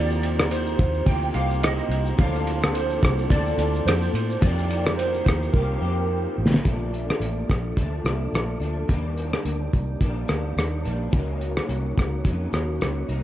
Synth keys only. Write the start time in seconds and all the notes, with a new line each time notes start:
Already playing: D5
0.51 C5
1.06 G5
1.35 F5
1.63 D#5
2.19 F5
2.74 C5
3.30 D5
3.86 C5
4.41 D5
4.97 C5
5.24 C5
5.53 A#4